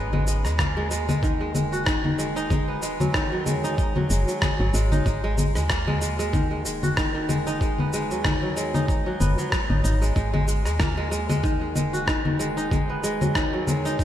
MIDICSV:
0, 0, Header, 1, 4, 480
1, 0, Start_track
1, 0, Tempo, 638298
1, 1883, Time_signature, 4, 2, 24, 8
1, 10558, End_track
2, 0, Start_track
2, 0, Title_t, "Kora"
2, 0, Program_c, 0, 46
2, 0, Note_on_c, 0, 56, 93
2, 0, Note_on_c, 0, 59, 102
2, 0, Note_on_c, 0, 61, 79
2, 0, Note_on_c, 0, 63, 68
2, 0, Note_on_c, 0, 66, 75
2, 89, Note_off_c, 0, 56, 0
2, 98, Note_on_c, 0, 56, 100
2, 195, Note_off_c, 0, 56, 0
2, 204, Note_on_c, 0, 56, 72
2, 330, Note_off_c, 0, 56, 0
2, 339, Note_on_c, 0, 56, 72
2, 444, Note_on_c, 0, 58, 94
2, 474, Note_off_c, 0, 66, 0
2, 489, Note_off_c, 0, 59, 0
2, 569, Note_off_c, 0, 56, 0
2, 578, Note_on_c, 0, 56, 91
2, 676, Note_off_c, 0, 56, 0
2, 685, Note_on_c, 0, 56, 94
2, 786, Note_off_c, 0, 61, 0
2, 809, Note_off_c, 0, 56, 0
2, 818, Note_on_c, 0, 56, 94
2, 924, Note_on_c, 0, 51, 91
2, 942, Note_off_c, 0, 63, 0
2, 960, Note_off_c, 0, 56, 0
2, 1058, Note_on_c, 0, 56, 73
2, 1155, Note_off_c, 0, 56, 0
2, 1164, Note_on_c, 0, 56, 71
2, 1297, Note_on_c, 0, 66, 74
2, 1395, Note_off_c, 0, 51, 0
2, 1404, Note_on_c, 0, 51, 96
2, 1440, Note_off_c, 0, 56, 0
2, 1530, Note_off_c, 0, 51, 0
2, 1539, Note_on_c, 0, 51, 70
2, 1643, Note_on_c, 0, 56, 86
2, 1777, Note_on_c, 0, 63, 103
2, 1874, Note_off_c, 0, 56, 0
2, 1883, Note_on_c, 0, 56, 95
2, 1895, Note_off_c, 0, 58, 0
2, 2017, Note_on_c, 0, 59, 72
2, 2116, Note_off_c, 0, 56, 0
2, 2125, Note_on_c, 0, 56, 97
2, 2259, Note_on_c, 0, 54, 68
2, 2354, Note_off_c, 0, 51, 0
2, 2363, Note_on_c, 0, 51, 95
2, 2396, Note_off_c, 0, 66, 0
2, 2400, Note_off_c, 0, 54, 0
2, 2400, Note_off_c, 0, 56, 0
2, 2498, Note_on_c, 0, 54, 72
2, 2602, Note_on_c, 0, 56, 93
2, 2735, Note_off_c, 0, 63, 0
2, 2738, Note_on_c, 0, 63, 97
2, 2842, Note_off_c, 0, 63, 0
2, 2845, Note_on_c, 0, 63, 78
2, 2970, Note_off_c, 0, 54, 0
2, 2979, Note_on_c, 0, 54, 73
2, 3074, Note_off_c, 0, 56, 0
2, 3083, Note_on_c, 0, 56, 71
2, 3210, Note_off_c, 0, 54, 0
2, 3219, Note_on_c, 0, 54, 73
2, 3323, Note_on_c, 0, 68, 81
2, 3418, Note_off_c, 0, 59, 0
2, 3449, Note_off_c, 0, 54, 0
2, 3458, Note_on_c, 0, 54, 66
2, 3556, Note_off_c, 0, 56, 0
2, 3565, Note_on_c, 0, 56, 94
2, 3696, Note_off_c, 0, 63, 0
2, 3699, Note_on_c, 0, 63, 105
2, 3796, Note_off_c, 0, 56, 0
2, 3805, Note_on_c, 0, 56, 100
2, 3930, Note_off_c, 0, 56, 0
2, 3939, Note_on_c, 0, 56, 103
2, 4037, Note_off_c, 0, 56, 0
2, 4046, Note_on_c, 0, 56, 73
2, 4123, Note_off_c, 0, 51, 0
2, 4170, Note_off_c, 0, 56, 0
2, 4179, Note_on_c, 0, 56, 70
2, 4284, Note_on_c, 0, 58, 96
2, 4349, Note_off_c, 0, 68, 0
2, 4409, Note_off_c, 0, 56, 0
2, 4418, Note_on_c, 0, 56, 96
2, 4514, Note_off_c, 0, 56, 0
2, 4523, Note_on_c, 0, 56, 91
2, 4647, Note_off_c, 0, 56, 0
2, 4656, Note_on_c, 0, 56, 93
2, 4760, Note_on_c, 0, 51, 89
2, 4800, Note_off_c, 0, 54, 0
2, 4800, Note_off_c, 0, 56, 0
2, 4895, Note_on_c, 0, 56, 69
2, 4919, Note_off_c, 0, 63, 0
2, 4993, Note_off_c, 0, 56, 0
2, 5002, Note_on_c, 0, 56, 74
2, 5136, Note_on_c, 0, 66, 73
2, 5234, Note_off_c, 0, 51, 0
2, 5243, Note_on_c, 0, 51, 98
2, 5280, Note_off_c, 0, 56, 0
2, 5366, Note_off_c, 0, 51, 0
2, 5375, Note_on_c, 0, 51, 71
2, 5480, Note_on_c, 0, 56, 92
2, 5616, Note_on_c, 0, 63, 100
2, 5715, Note_off_c, 0, 56, 0
2, 5724, Note_on_c, 0, 56, 88
2, 5735, Note_off_c, 0, 58, 0
2, 5861, Note_on_c, 0, 59, 71
2, 5958, Note_off_c, 0, 56, 0
2, 5967, Note_on_c, 0, 56, 93
2, 6100, Note_on_c, 0, 54, 68
2, 6195, Note_off_c, 0, 51, 0
2, 6204, Note_on_c, 0, 51, 86
2, 6236, Note_off_c, 0, 66, 0
2, 6240, Note_off_c, 0, 54, 0
2, 6240, Note_off_c, 0, 56, 0
2, 6336, Note_on_c, 0, 54, 67
2, 6441, Note_on_c, 0, 56, 93
2, 6572, Note_off_c, 0, 63, 0
2, 6575, Note_on_c, 0, 63, 95
2, 6677, Note_off_c, 0, 63, 0
2, 6680, Note_on_c, 0, 63, 76
2, 6805, Note_off_c, 0, 54, 0
2, 6814, Note_on_c, 0, 54, 71
2, 6918, Note_off_c, 0, 59, 0
2, 6921, Note_on_c, 0, 59, 74
2, 7045, Note_off_c, 0, 54, 0
2, 7054, Note_on_c, 0, 54, 72
2, 7151, Note_off_c, 0, 54, 0
2, 7160, Note_on_c, 0, 54, 79
2, 7291, Note_off_c, 0, 63, 0
2, 7294, Note_on_c, 0, 63, 68
2, 7396, Note_off_c, 0, 63, 0
2, 7399, Note_on_c, 0, 63, 89
2, 7522, Note_off_c, 0, 56, 0
2, 7531, Note_on_c, 0, 56, 76
2, 7629, Note_off_c, 0, 56, 0
2, 7638, Note_on_c, 0, 56, 91
2, 7680, Note_off_c, 0, 51, 0
2, 7680, Note_off_c, 0, 54, 0
2, 7763, Note_off_c, 0, 56, 0
2, 7772, Note_on_c, 0, 56, 102
2, 7871, Note_off_c, 0, 56, 0
2, 7880, Note_on_c, 0, 56, 74
2, 8004, Note_off_c, 0, 56, 0
2, 8013, Note_on_c, 0, 56, 69
2, 8117, Note_on_c, 0, 58, 91
2, 8162, Note_off_c, 0, 59, 0
2, 8243, Note_off_c, 0, 56, 0
2, 8252, Note_on_c, 0, 56, 96
2, 8348, Note_off_c, 0, 56, 0
2, 8357, Note_on_c, 0, 56, 93
2, 8484, Note_off_c, 0, 56, 0
2, 8493, Note_on_c, 0, 56, 94
2, 8597, Note_on_c, 0, 51, 91
2, 8619, Note_off_c, 0, 63, 0
2, 8640, Note_off_c, 0, 56, 0
2, 8733, Note_on_c, 0, 56, 73
2, 8831, Note_off_c, 0, 56, 0
2, 8840, Note_on_c, 0, 56, 77
2, 8973, Note_on_c, 0, 66, 76
2, 9071, Note_off_c, 0, 51, 0
2, 9080, Note_on_c, 0, 51, 98
2, 9120, Note_off_c, 0, 56, 0
2, 9205, Note_off_c, 0, 51, 0
2, 9214, Note_on_c, 0, 51, 71
2, 9319, Note_on_c, 0, 56, 90
2, 9453, Note_on_c, 0, 63, 96
2, 9552, Note_off_c, 0, 56, 0
2, 9561, Note_on_c, 0, 56, 96
2, 9568, Note_off_c, 0, 58, 0
2, 9697, Note_on_c, 0, 59, 75
2, 9794, Note_off_c, 0, 56, 0
2, 9803, Note_on_c, 0, 56, 99
2, 9937, Note_on_c, 0, 54, 72
2, 10034, Note_off_c, 0, 51, 0
2, 10043, Note_on_c, 0, 51, 90
2, 10072, Note_off_c, 0, 66, 0
2, 10080, Note_off_c, 0, 54, 0
2, 10080, Note_off_c, 0, 56, 0
2, 10177, Note_on_c, 0, 54, 72
2, 10283, Note_on_c, 0, 56, 95
2, 10414, Note_off_c, 0, 63, 0
2, 10417, Note_on_c, 0, 63, 93
2, 10520, Note_off_c, 0, 63, 0
2, 10523, Note_on_c, 0, 63, 76
2, 10558, Note_off_c, 0, 51, 0
2, 10558, Note_off_c, 0, 54, 0
2, 10558, Note_off_c, 0, 56, 0
2, 10558, Note_off_c, 0, 59, 0
2, 10558, Note_off_c, 0, 63, 0
2, 10558, End_track
3, 0, Start_track
3, 0, Title_t, "FM bass"
3, 0, Program_c, 1, 39
3, 0, Note_on_c, 1, 32, 92
3, 337, Note_on_c, 1, 39, 91
3, 348, Note_off_c, 1, 32, 0
3, 1160, Note_on_c, 1, 27, 89
3, 1172, Note_off_c, 1, 39, 0
3, 2254, Note_on_c, 1, 39, 94
3, 2265, Note_off_c, 1, 27, 0
3, 3054, Note_off_c, 1, 39, 0
3, 3085, Note_on_c, 1, 30, 85
3, 3197, Note_off_c, 1, 30, 0
3, 3456, Note_on_c, 1, 32, 96
3, 3546, Note_off_c, 1, 32, 0
3, 3560, Note_on_c, 1, 32, 100
3, 3768, Note_off_c, 1, 32, 0
3, 3803, Note_on_c, 1, 32, 88
3, 4179, Note_on_c, 1, 39, 95
3, 4190, Note_off_c, 1, 32, 0
3, 5003, Note_on_c, 1, 27, 89
3, 5014, Note_off_c, 1, 39, 0
3, 6094, Note_on_c, 1, 39, 101
3, 6105, Note_off_c, 1, 27, 0
3, 6894, Note_off_c, 1, 39, 0
3, 6923, Note_on_c, 1, 30, 82
3, 7036, Note_off_c, 1, 30, 0
3, 7294, Note_on_c, 1, 32, 96
3, 7385, Note_off_c, 1, 32, 0
3, 7403, Note_on_c, 1, 32, 96
3, 7609, Note_off_c, 1, 32, 0
3, 7641, Note_on_c, 1, 32, 93
3, 8012, Note_on_c, 1, 39, 88
3, 8023, Note_off_c, 1, 32, 0
3, 8841, Note_on_c, 1, 27, 85
3, 8852, Note_off_c, 1, 39, 0
3, 9935, Note_on_c, 1, 39, 99
3, 9946, Note_off_c, 1, 27, 0
3, 10558, Note_off_c, 1, 39, 0
3, 10558, End_track
4, 0, Start_track
4, 0, Title_t, "Drums"
4, 96, Note_on_c, 9, 64, 72
4, 171, Note_off_c, 9, 64, 0
4, 203, Note_on_c, 9, 69, 78
4, 279, Note_off_c, 9, 69, 0
4, 336, Note_on_c, 9, 37, 29
4, 339, Note_on_c, 9, 69, 41
4, 411, Note_off_c, 9, 37, 0
4, 414, Note_off_c, 9, 69, 0
4, 443, Note_on_c, 9, 36, 89
4, 443, Note_on_c, 9, 37, 97
4, 443, Note_on_c, 9, 64, 73
4, 445, Note_on_c, 9, 69, 33
4, 518, Note_off_c, 9, 36, 0
4, 518, Note_off_c, 9, 37, 0
4, 518, Note_off_c, 9, 64, 0
4, 521, Note_off_c, 9, 69, 0
4, 685, Note_on_c, 9, 69, 75
4, 760, Note_off_c, 9, 69, 0
4, 817, Note_on_c, 9, 64, 70
4, 820, Note_on_c, 9, 69, 40
4, 893, Note_off_c, 9, 64, 0
4, 895, Note_off_c, 9, 69, 0
4, 923, Note_on_c, 9, 36, 108
4, 926, Note_on_c, 9, 69, 32
4, 998, Note_off_c, 9, 36, 0
4, 1002, Note_off_c, 9, 69, 0
4, 1163, Note_on_c, 9, 64, 72
4, 1166, Note_on_c, 9, 69, 75
4, 1239, Note_off_c, 9, 64, 0
4, 1241, Note_off_c, 9, 69, 0
4, 1299, Note_on_c, 9, 69, 41
4, 1375, Note_off_c, 9, 69, 0
4, 1402, Note_on_c, 9, 37, 95
4, 1403, Note_on_c, 9, 36, 104
4, 1405, Note_on_c, 9, 69, 31
4, 1477, Note_off_c, 9, 37, 0
4, 1478, Note_off_c, 9, 36, 0
4, 1480, Note_off_c, 9, 69, 0
4, 1536, Note_on_c, 9, 64, 72
4, 1612, Note_off_c, 9, 64, 0
4, 1646, Note_on_c, 9, 69, 71
4, 1721, Note_off_c, 9, 69, 0
4, 1779, Note_on_c, 9, 69, 37
4, 1854, Note_off_c, 9, 69, 0
4, 1881, Note_on_c, 9, 64, 73
4, 1884, Note_on_c, 9, 36, 101
4, 1884, Note_on_c, 9, 69, 33
4, 1957, Note_off_c, 9, 64, 0
4, 1959, Note_off_c, 9, 36, 0
4, 1959, Note_off_c, 9, 69, 0
4, 2123, Note_on_c, 9, 69, 78
4, 2198, Note_off_c, 9, 69, 0
4, 2257, Note_on_c, 9, 64, 68
4, 2260, Note_on_c, 9, 69, 43
4, 2332, Note_off_c, 9, 64, 0
4, 2335, Note_off_c, 9, 69, 0
4, 2363, Note_on_c, 9, 37, 93
4, 2364, Note_on_c, 9, 36, 92
4, 2365, Note_on_c, 9, 69, 31
4, 2438, Note_off_c, 9, 37, 0
4, 2439, Note_off_c, 9, 36, 0
4, 2441, Note_off_c, 9, 69, 0
4, 2603, Note_on_c, 9, 64, 70
4, 2606, Note_on_c, 9, 69, 78
4, 2678, Note_off_c, 9, 64, 0
4, 2681, Note_off_c, 9, 69, 0
4, 2738, Note_on_c, 9, 69, 44
4, 2814, Note_off_c, 9, 69, 0
4, 2844, Note_on_c, 9, 36, 113
4, 2844, Note_on_c, 9, 69, 34
4, 2919, Note_off_c, 9, 36, 0
4, 2919, Note_off_c, 9, 69, 0
4, 2975, Note_on_c, 9, 64, 75
4, 3050, Note_off_c, 9, 64, 0
4, 3084, Note_on_c, 9, 69, 83
4, 3159, Note_off_c, 9, 69, 0
4, 3219, Note_on_c, 9, 69, 42
4, 3294, Note_off_c, 9, 69, 0
4, 3322, Note_on_c, 9, 37, 100
4, 3322, Note_on_c, 9, 64, 70
4, 3324, Note_on_c, 9, 36, 107
4, 3325, Note_on_c, 9, 69, 32
4, 3398, Note_off_c, 9, 37, 0
4, 3398, Note_off_c, 9, 64, 0
4, 3399, Note_off_c, 9, 36, 0
4, 3400, Note_off_c, 9, 69, 0
4, 3565, Note_on_c, 9, 69, 79
4, 3640, Note_off_c, 9, 69, 0
4, 3698, Note_on_c, 9, 64, 67
4, 3700, Note_on_c, 9, 69, 41
4, 3773, Note_off_c, 9, 64, 0
4, 3776, Note_off_c, 9, 69, 0
4, 3804, Note_on_c, 9, 36, 102
4, 3806, Note_on_c, 9, 69, 34
4, 3879, Note_off_c, 9, 36, 0
4, 3882, Note_off_c, 9, 69, 0
4, 4042, Note_on_c, 9, 64, 73
4, 4045, Note_on_c, 9, 69, 84
4, 4118, Note_off_c, 9, 64, 0
4, 4120, Note_off_c, 9, 69, 0
4, 4177, Note_on_c, 9, 37, 30
4, 4179, Note_on_c, 9, 69, 44
4, 4252, Note_off_c, 9, 37, 0
4, 4255, Note_off_c, 9, 69, 0
4, 4283, Note_on_c, 9, 36, 93
4, 4283, Note_on_c, 9, 37, 95
4, 4286, Note_on_c, 9, 69, 33
4, 4358, Note_off_c, 9, 37, 0
4, 4359, Note_off_c, 9, 36, 0
4, 4361, Note_off_c, 9, 69, 0
4, 4416, Note_on_c, 9, 64, 67
4, 4491, Note_off_c, 9, 64, 0
4, 4524, Note_on_c, 9, 69, 78
4, 4599, Note_off_c, 9, 69, 0
4, 4658, Note_on_c, 9, 69, 45
4, 4733, Note_off_c, 9, 69, 0
4, 4762, Note_on_c, 9, 64, 74
4, 4764, Note_on_c, 9, 36, 108
4, 4765, Note_on_c, 9, 69, 35
4, 4837, Note_off_c, 9, 64, 0
4, 4839, Note_off_c, 9, 36, 0
4, 4840, Note_off_c, 9, 69, 0
4, 5004, Note_on_c, 9, 69, 81
4, 5079, Note_off_c, 9, 69, 0
4, 5136, Note_on_c, 9, 64, 63
4, 5139, Note_on_c, 9, 69, 42
4, 5211, Note_off_c, 9, 64, 0
4, 5214, Note_off_c, 9, 69, 0
4, 5242, Note_on_c, 9, 37, 90
4, 5243, Note_on_c, 9, 36, 106
4, 5245, Note_on_c, 9, 69, 33
4, 5317, Note_off_c, 9, 37, 0
4, 5318, Note_off_c, 9, 36, 0
4, 5320, Note_off_c, 9, 69, 0
4, 5482, Note_on_c, 9, 64, 70
4, 5485, Note_on_c, 9, 69, 76
4, 5557, Note_off_c, 9, 64, 0
4, 5560, Note_off_c, 9, 69, 0
4, 5617, Note_on_c, 9, 69, 42
4, 5692, Note_off_c, 9, 69, 0
4, 5722, Note_on_c, 9, 36, 99
4, 5724, Note_on_c, 9, 69, 33
4, 5797, Note_off_c, 9, 36, 0
4, 5800, Note_off_c, 9, 69, 0
4, 5854, Note_on_c, 9, 64, 72
4, 5929, Note_off_c, 9, 64, 0
4, 5963, Note_on_c, 9, 69, 77
4, 6038, Note_off_c, 9, 69, 0
4, 6098, Note_on_c, 9, 69, 42
4, 6173, Note_off_c, 9, 69, 0
4, 6200, Note_on_c, 9, 37, 92
4, 6200, Note_on_c, 9, 64, 73
4, 6202, Note_on_c, 9, 36, 90
4, 6203, Note_on_c, 9, 69, 31
4, 6276, Note_off_c, 9, 37, 0
4, 6276, Note_off_c, 9, 64, 0
4, 6277, Note_off_c, 9, 36, 0
4, 6278, Note_off_c, 9, 69, 0
4, 6443, Note_on_c, 9, 69, 75
4, 6518, Note_off_c, 9, 69, 0
4, 6576, Note_on_c, 9, 64, 71
4, 6578, Note_on_c, 9, 69, 42
4, 6651, Note_off_c, 9, 64, 0
4, 6653, Note_off_c, 9, 69, 0
4, 6681, Note_on_c, 9, 36, 109
4, 6685, Note_on_c, 9, 69, 34
4, 6756, Note_off_c, 9, 36, 0
4, 6761, Note_off_c, 9, 69, 0
4, 6921, Note_on_c, 9, 64, 78
4, 6924, Note_on_c, 9, 69, 79
4, 6996, Note_off_c, 9, 64, 0
4, 6999, Note_off_c, 9, 69, 0
4, 7057, Note_on_c, 9, 69, 42
4, 7132, Note_off_c, 9, 69, 0
4, 7160, Note_on_c, 9, 37, 97
4, 7161, Note_on_c, 9, 36, 110
4, 7163, Note_on_c, 9, 69, 31
4, 7236, Note_off_c, 9, 36, 0
4, 7236, Note_off_c, 9, 37, 0
4, 7238, Note_off_c, 9, 69, 0
4, 7294, Note_on_c, 9, 64, 73
4, 7370, Note_off_c, 9, 64, 0
4, 7404, Note_on_c, 9, 69, 73
4, 7479, Note_off_c, 9, 69, 0
4, 7537, Note_on_c, 9, 69, 42
4, 7612, Note_off_c, 9, 69, 0
4, 7641, Note_on_c, 9, 36, 99
4, 7643, Note_on_c, 9, 69, 33
4, 7716, Note_off_c, 9, 36, 0
4, 7718, Note_off_c, 9, 69, 0
4, 7773, Note_on_c, 9, 64, 74
4, 7849, Note_off_c, 9, 64, 0
4, 7881, Note_on_c, 9, 69, 77
4, 7956, Note_off_c, 9, 69, 0
4, 8012, Note_on_c, 9, 37, 28
4, 8015, Note_on_c, 9, 69, 43
4, 8088, Note_off_c, 9, 37, 0
4, 8090, Note_off_c, 9, 69, 0
4, 8119, Note_on_c, 9, 37, 84
4, 8119, Note_on_c, 9, 64, 71
4, 8121, Note_on_c, 9, 36, 87
4, 8121, Note_on_c, 9, 69, 30
4, 8194, Note_off_c, 9, 37, 0
4, 8194, Note_off_c, 9, 64, 0
4, 8196, Note_off_c, 9, 36, 0
4, 8197, Note_off_c, 9, 69, 0
4, 8362, Note_on_c, 9, 69, 72
4, 8437, Note_off_c, 9, 69, 0
4, 8494, Note_on_c, 9, 64, 75
4, 8497, Note_on_c, 9, 69, 42
4, 8569, Note_off_c, 9, 64, 0
4, 8572, Note_off_c, 9, 69, 0
4, 8601, Note_on_c, 9, 36, 103
4, 8604, Note_on_c, 9, 69, 32
4, 8676, Note_off_c, 9, 36, 0
4, 8679, Note_off_c, 9, 69, 0
4, 8841, Note_on_c, 9, 64, 73
4, 8843, Note_on_c, 9, 69, 78
4, 8916, Note_off_c, 9, 64, 0
4, 8919, Note_off_c, 9, 69, 0
4, 8978, Note_on_c, 9, 69, 40
4, 9053, Note_off_c, 9, 69, 0
4, 9081, Note_on_c, 9, 36, 98
4, 9081, Note_on_c, 9, 37, 89
4, 9084, Note_on_c, 9, 69, 30
4, 9156, Note_off_c, 9, 36, 0
4, 9157, Note_off_c, 9, 37, 0
4, 9159, Note_off_c, 9, 69, 0
4, 9213, Note_on_c, 9, 64, 76
4, 9289, Note_off_c, 9, 64, 0
4, 9324, Note_on_c, 9, 69, 74
4, 9399, Note_off_c, 9, 69, 0
4, 9457, Note_on_c, 9, 69, 41
4, 9533, Note_off_c, 9, 69, 0
4, 9561, Note_on_c, 9, 36, 93
4, 9562, Note_on_c, 9, 64, 75
4, 9565, Note_on_c, 9, 69, 32
4, 9636, Note_off_c, 9, 36, 0
4, 9637, Note_off_c, 9, 64, 0
4, 9640, Note_off_c, 9, 69, 0
4, 9804, Note_on_c, 9, 69, 74
4, 9879, Note_off_c, 9, 69, 0
4, 9936, Note_on_c, 9, 64, 72
4, 9939, Note_on_c, 9, 69, 41
4, 10011, Note_off_c, 9, 64, 0
4, 10014, Note_off_c, 9, 69, 0
4, 10041, Note_on_c, 9, 36, 89
4, 10042, Note_on_c, 9, 37, 87
4, 10044, Note_on_c, 9, 69, 29
4, 10116, Note_off_c, 9, 36, 0
4, 10117, Note_off_c, 9, 37, 0
4, 10120, Note_off_c, 9, 69, 0
4, 10283, Note_on_c, 9, 64, 81
4, 10285, Note_on_c, 9, 69, 72
4, 10358, Note_off_c, 9, 64, 0
4, 10361, Note_off_c, 9, 69, 0
4, 10419, Note_on_c, 9, 69, 38
4, 10494, Note_off_c, 9, 69, 0
4, 10522, Note_on_c, 9, 36, 93
4, 10525, Note_on_c, 9, 69, 31
4, 10558, Note_off_c, 9, 36, 0
4, 10558, Note_off_c, 9, 69, 0
4, 10558, End_track
0, 0, End_of_file